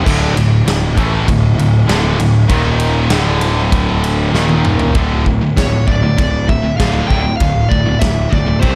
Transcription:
0.05 picked electric bass D1, distorted electric guitar D2 A2 D3, kick, crash
0.36 picked electric bass D1, distorted electric guitar D2 A2, ride
0.66 picked electric bass D1, distorted electric guitar D2 A2, snare, ride
0.97 picked electric bass A1, distorted electric guitar A2 E3 A3, kick, ride
1.28 picked electric bass D1, distorted electric guitar D2 A2, kick, ride
1.58 picked electric bass D1, distorted electric guitar D2 A2, ride
1.88 picked electric bass D1, distorted electric guitar D2 A2 D3, snare, ride
2.19 picked electric bass D1, distorted electric guitar D2 A2, ride
2.49 picked electric bass D#1, distorted electric guitar D#2 A#2 D#3, kick, ride
2.80 ride
3.10 picked electric bass D1, distorted electric guitar D2 A2 D3, snare, ride
3.41 ride
3.72 kick, ride
4.04 ride
4.32 picked electric bass D#1, distorted electric guitar D#2 A#2 D#3, snare
4.49 high tom
4.65 mid tom
4.79 floor tom
4.95 picked electric bass D1, distorted electric guitar D2 A2 D3, kick, ride bell
5.24 distorted electric guitar D2 A2, kick
5.41 distorted electric guitar D2 A2
5.56 picked electric bass D1, distorted electric guitar D2 A2, lead electric guitar C#5, kick, snare, ride bell
5.88 picked electric bass D1, distorted electric guitar D2 A2, lead electric guitar D5, kick
6.03 distorted electric guitar D2 A2
6.18 picked electric bass D1, distorted electric guitar D2 A2, kick, ride bell
6.49 distorted electric guitar D2 A2, lead electric guitar E5, kick
6.63 distorted electric guitar D2 A2
6.77 picked electric bass D1, distorted electric guitar D2 A2 D3, lead electric guitar F5, kick, snare, ride bell
7.08 picked electric bass D1, distorted electric guitar D2 A2 D3, lead electric guitar G5, kick
7.25 distorted electric guitar D2 A2
7.37 picked electric bass D1, distorted electric guitar A2, lead electric guitar F5, kick, ride bell
7.41 distorted electric guitar D2
7.69 picked electric bass D1, distorted electric guitar D2 A2, lead electric guitar D5, kick
7.86 distorted electric guitar D2 A2
7.99 picked electric bass D1, distorted electric guitar D2 A2, lead electric guitar E5, kick, snare, ride bell
8.29 picked electric bass D1, distorted electric guitar D2 A2, lead electric guitar D5, kick
8.46 distorted electric guitar D2 A2
8.61 picked electric bass C2, distorted electric guitar C3 G3 C4, lead electric guitar C5, kick, ride bell

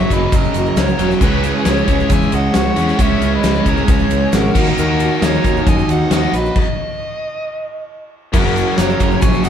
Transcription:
Already playing: overdriven electric guitar F#2 C#3 F#3, steel-string acoustic guitar F#3 C#4 F#4, lead electric guitar E5
0.09 fingered electric bass F#1, overdriven electric guitar F#2 C#3 F#3, steel-string acoustic guitar C#4 F#4 A#4, lead electric guitar B4 D#5, kick, ride, shaker
0.32 fingered electric bass F#1, steel-string acoustic guitar F#3 C#4 F#4 A#4, lead electric guitar A#4 D#5, kick, ride, shaker
0.44 shaker
0.54 fingered electric bass F#1, steel-string acoustic guitar F#4 A#4, ride, shaker
0.58 steel-string acoustic guitar C#4
0.66 shaker
0.76 fingered electric bass C#2, steel-string acoustic guitar F#3 C#4 F#4, lead electric guitar A#4 C#5, snare, ride, shaker
0.80 steel-string acoustic guitar A#4
0.89 shaker
0.98 fingered electric bass E1, overdriven electric guitar F#2 C#3 F#3, steel-string acoustic guitar F#4 A#4, ride, shaker
1.02 steel-string acoustic guitar C#4
1.10 snare, shaker
1.20 fingered electric bass C#2, overdriven electric guitar C#3 G#3 C#4, steel-string acoustic guitar C#3 G#3 C#4 E4 G#4, lead electric guitar G#4 B4, kick, crash, shaker
1.43 steel-string acoustic guitar C#4 E4 G#4, ride, shaker
1.65 fingered electric bass C#2, steel-string acoustic guitar C#3 G#3 C#4 E4 G#4, lead electric guitar G#4 C#5, snare, ride, shaker
1.77 shaker
1.86 fingered electric bass C#2, overdriven electric guitar C#3 G#3 C#4, steel-string acoustic guitar E4 G#4, kick, ride, shaker
1.91 steel-string acoustic guitar C#4
2.00 shaker
2.09 fingered electric bass E2, steel-string acoustic guitar G#3 C#4 E4 G#4, lead electric guitar E5 G#5, kick, ride, shaker
2.23 shaker
2.32 fingered electric bass C#2, steel-string acoustic guitar C#4 E4 G#4, lead electric guitar D#5 F#5, ride, shaker
2.54 fingered electric bass C#2, steel-string acoustic guitar C#3 G#3 E4, lead electric guitar C#5 F#5, snare, ride, shaker
2.76 fingered electric bass E2, overdriven electric guitar C#3 G#3 C#4, steel-string acoustic guitar C#4 E4 G#4, ride, shaker
2.88 snare, shaker
2.98 fingered electric bass C#2, overdriven electric guitar C#3 G#3 C#4, steel-string acoustic guitar C#3 G#3 C#4 E4 G#4, lead electric guitar E5, kick, ride, shaker
3.02 lead electric guitar C#5
3.21 fingered electric bass C#2, steel-string acoustic guitar C#4 E4 G#4, ride, shaker
3.35 lead electric guitar B4 D#5
3.43 fingered electric bass C#2, steel-string acoustic guitar C#3 G#3 C#4 E4 G#4, snare, ride, shaker
3.55 shaker
3.65 fingered electric bass C#2, overdriven electric guitar C#3 G#3 C#4, steel-string acoustic guitar C#4 E4 G#4, lead electric guitar A#4 C#5, kick, ride, shaker
3.77 shaker
3.88 fingered electric bass C#2, steel-string acoustic guitar C#4 E4 G#4, lead electric guitar G#4 C#5, kick, ride, shaker
3.99 shaker
4.09 fingered electric bass C#2, steel-string acoustic guitar C#4 E4 G#4, ride, shaker
4.32 fingered electric bass G#1, steel-string acoustic guitar C#3 G#3 C#4 E4 G#4, lead electric guitar F#4 A#4, snare, ride, shaker
4.54 fingered electric bass D#2, overdriven electric guitar D#3 A#3 D#4, steel-string acoustic guitar D#4 F#4 A#4, kick, crash, shaker
4.67 snare, shaker
4.77 fingered electric bass D#2, steel-string acoustic guitar D#3 F#3 D#4 F#4 A#4, lead electric guitar F#4 A#4, shaker
5.00 steel-string acoustic guitar D#4 F#4 A#4, ride, shaker
5.21 fingered electric bass D#2, overdriven electric guitar D#3 A#3 D#4, steel-string acoustic guitar D#3 F#3 D#4 F#4 A#4, lead electric guitar A#4 C#5, snare, ride, shaker
5.44 fingered electric bass D#2, steel-string acoustic guitar D#4 F#4 A#4, kick, ride, shaker
5.57 shaker
5.66 fingered electric bass F#2, steel-string acoustic guitar F#3 D#4 F#4 A#4, lead electric guitar D#5 G#5, kick, ride, shaker
5.79 shaker
5.89 fingered electric bass D#2, steel-string acoustic guitar D#4 F#4 A#4, lead electric guitar D#5 F#5, ride, shaker
6.10 fingered electric bass D#2, overdriven electric guitar D#3 A#3 D#4, steel-string acoustic guitar F#3 D#4 F#4 A#4, lead electric guitar D#5 F#5, snare, ride, shaker
6.33 fingered electric bass A#1, steel-string acoustic guitar D#4 F#4 A#4, lead electric guitar B4 D#5, ride, shaker
6.46 shaker
6.56 lead electric guitar D#5, kick, crash
8.33 fingered electric bass F#1, overdriven electric guitar F#2 C#3 F#3, steel-string acoustic guitar F#3 C#4 F#4 A#4, lead electric guitar F#4 A#4, kick, crash, shaker
8.56 steel-string acoustic guitar C#4 F#4 A#4, ride, shaker
8.78 fingered electric bass F#1, steel-string acoustic guitar F#3 C#4 F#4 A#4, lead electric guitar A#4 C#5, snare, ride, shaker
8.90 shaker
9.00 fingered electric bass F#1, overdriven electric guitar F#2 C#3 F#3, steel-string acoustic guitar C#4 F#4 A#4, kick, ride, shaker
9.11 shaker
9.21 fingered electric bass A#1, steel-string acoustic guitar F#3 C#4 F#4 A#4, lead electric guitar C#5 G#5, kick, ride, shaker
9.33 shaker
9.44 fingered electric bass F#1, steel-string acoustic guitar A#4, lead electric guitar D#5 F#5, ride, shaker

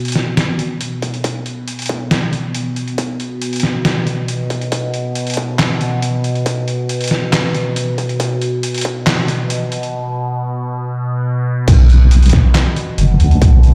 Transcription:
Already playing: synth drone B2
0.05 closed hi-hat
0.08 closed hi-hat
0.12 snare, closed hi-hat
0.37 snare, closed hi-hat
0.59 closed hi-hat
0.81 closed hi-hat
1.02 kick, closed hi-hat
1.14 closed hi-hat
1.24 kick, closed hi-hat
1.46 closed hi-hat
1.68 closed hi-hat
1.79 closed hi-hat
1.82 closed hi-hat
1.86 kick, closed hi-hat
2.11 snare, closed hi-hat
2.33 closed hi-hat
2.55 closed hi-hat
2.76 closed hi-hat
2.88 closed hi-hat
2.98 kick, closed hi-hat
3.20 closed hi-hat
3.42 closed hi-hat
3.53 closed hi-hat
3.56 closed hi-hat
3.60 snare, closed hi-hat
3.85 snare, closed hi-hat
4.07 closed hi-hat
4.28 closed hi-hat
4.50 kick, closed hi-hat
4.61 closed hi-hat
4.72 kick, closed hi-hat
4.94 closed hi-hat
5.15 closed hi-hat
5.27 closed hi-hat
5.30 closed hi-hat
5.34 kick, closed hi-hat
5.59 snare, clap, closed hi-hat
5.81 closed hi-hat
6.02 closed hi-hat
6.24 closed hi-hat
6.35 closed hi-hat
6.46 kick, closed hi-hat
6.68 closed hi-hat
6.89 closed hi-hat
7.01 closed hi-hat
7.04 closed hi-hat
7.08 snare, closed hi-hat
7.33 snare, clap, closed hi-hat
7.55 closed hi-hat
7.76 closed hi-hat
7.98 kick, closed hi-hat
8.09 closed hi-hat
8.20 kick, closed hi-hat
8.42 closed hi-hat
8.63 closed hi-hat
8.74 closed hi-hat
8.78 closed hi-hat
8.81 kick, closed hi-hat
9.07 snare, clap, closed hi-hat
9.28 closed hi-hat
9.50 closed hi-hat
9.72 closed hi-hat
9.83 closed hi-hat
11.68 wobble bass B1, synth drone B2, kick, closed hi-hat, crash
11.89 closed hi-hat
12.11 closed hi-hat
12.23 closed hi-hat
12.26 closed hi-hat
12.29 wobble bass B1, kick, snare, closed hi-hat
12.55 snare, clap, closed hi-hat
12.76 closed hi-hat
12.98 wobble bass F#1, closed hi-hat
13.20 wobble bass D2, closed hi-hat
13.31 closed hi-hat
13.42 wobble bass B1, kick, closed hi-hat
13.63 closed hi-hat

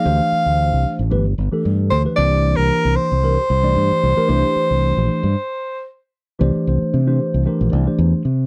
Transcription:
Already playing: soprano saxophone F5
0.04 fingered electric bass D2, tine electric piano E3 A3 D4 G4 C5
0.32 muted fingered electric bass stroke
0.46 fingered electric bass D2
0.73 fingered electric bass C2
0.99 fingered electric bass A1
1.10 fingered electric bass G1, tine electric piano E3 A3 D4 G4 B4
1.25 tine electric piano G4 D5
1.38 fingered electric bass G1
1.52 tine electric piano E3 A3 D4 G4 A4, muted fingered electric bass stroke
1.65 fingered electric bass G2
1.90 fingered electric bass D2, soprano saxophone C5
2.04 tine electric piano E3 A3 D4 G4 B4, muted fingered electric bass stroke
2.16 fingered electric bass C2, tine electric piano E3 A#3 D4 G4 C5, soprano saxophone D5
2.56 fingered electric bass C2, soprano saxophone A#4
2.85 fingered electric bass C2
2.96 soprano saxophone C5
3.12 fingered electric bass C2
3.23 tine electric piano E3 A3 D4 G4 A#4
3.37 tine electric piano G4 A4
3.50 fingered electric bass C2
3.63 tine electric piano E3 A3 D4 G4 D5
3.76 fingered electric bass G2
3.91 muted fingered electric bass stroke
4.03 fingered electric bass C2
4.16 tine electric piano E3 A3 D4 G4 A#4
4.27 fingered electric bass C2, tine electric piano E3 A3 D4 G4 C5
4.56 muted fingered electric bass stroke
4.71 fingered electric bass C2
4.97 fingered electric bass A#1
5.23 fingered electric bass G2
6.39 fingered electric bass C2, tine electric piano E3 A3 D4 G4 C5 D5
6.55 muted fingered electric bass stroke
6.67 fingered electric bass C2, tine electric piano C5
6.82 muted fingered electric bass stroke
6.94 fingered electric bass C3
7.07 tine electric piano E3 A3 D4 G4 C5
7.34 fingered electric bass C2
7.45 tine electric piano E3 A3 D4 G4 A#4 C5
7.61 fingered electric bass A#1
7.72 fingered electric bass C2, tine electric piano D5
7.86 tine electric piano E3 A3 D4 G4 C5
7.99 fingered electric bass E2
8.25 fingered electric bass C3, tine electric piano G4 C5

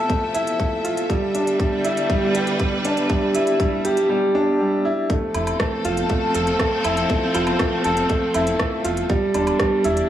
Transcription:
Already playing: string section C3 F3 A4 E5, grand piano A3 E4 F4 A4
0.09 grand piano A3, kick, closed hi-hat
0.34 grand piano E4, closed hi-hat
0.47 closed hi-hat
0.59 grand piano A3, kick, closed hi-hat
0.84 grand piano F4, closed hi-hat
0.97 closed hi-hat
1.09 string section D3, grand piano G3, kick, closed hi-hat
1.32 string section G3, grand piano D4, closed hi-hat
1.47 closed hi-hat
1.60 grand piano G3, kick, closed hi-hat
1.71 string section B4
1.84 grand piano E4, closed hi-hat
1.97 closed hi-hat
2.10 grand piano G3, kick, closed hi-hat
2.35 grand piano G4, closed hi-hat
2.47 closed hi-hat
2.60 grand piano G3, kick, closed hi-hat
2.85 grand piano D4, closed hi-hat
2.97 closed hi-hat
3.10 grand piano G3, kick, closed hi-hat
3.35 grand piano E4, closed hi-hat
3.47 closed hi-hat
3.60 grand piano G3, kick, closed hi-hat
3.85 grand piano G4, closed hi-hat
3.97 closed hi-hat
4.10 grand piano G3
4.35 grand piano D4
4.60 grand piano G3
4.85 grand piano E4
5.10 string section F3, grand piano A3, kick, closed hi-hat
5.30 string section A4
5.34 analog synth bass F1, grand piano E4, closed hi-hat, low woodblock
5.45 string section C4, closed hi-hat, low woodblock
5.60 grand piano A3, kick, cross-stick, closed hi-hat
5.85 analog synth bass F1, grand piano F4, closed hi-hat
5.97 closed hi-hat
6.09 grand piano A3, kick, closed hi-hat
6.35 analog synth bass F1, grand piano A4, closed hi-hat
6.47 closed hi-hat
6.60 grand piano A3, kick, cross-stick, closed hi-hat
6.84 analog synth bass F1, grand piano E4, closed hi-hat, low woodblock
6.97 closed hi-hat
7.10 grand piano A3, kick, closed hi-hat
7.35 analog synth bass F1, grand piano F4, closed hi-hat, low woodblock
7.47 closed hi-hat, low woodblock
7.59 grand piano A3, kick, cross-stick, closed hi-hat
7.84 analog synth bass F1, grand piano A4, closed hi-hat
7.97 closed hi-hat
8.09 grand piano A3, kick, closed hi-hat
8.34 analog synth bass F1, grand piano E4, closed hi-hat, low woodblock
8.47 closed hi-hat
8.60 grand piano A3, kick, cross-stick, closed hi-hat
8.85 analog synth bass F1, grand piano F4, closed hi-hat
8.97 closed hi-hat
9.10 grand piano G3, string section G3, kick, closed hi-hat
9.34 analog synth bass E1, grand piano D4, string section D4, closed hi-hat, low woodblock
9.47 closed hi-hat, low woodblock
9.60 grand piano G3, kick, cross-stick, closed hi-hat
9.84 analog synth bass E1, grand piano E4, closed hi-hat
9.97 closed hi-hat

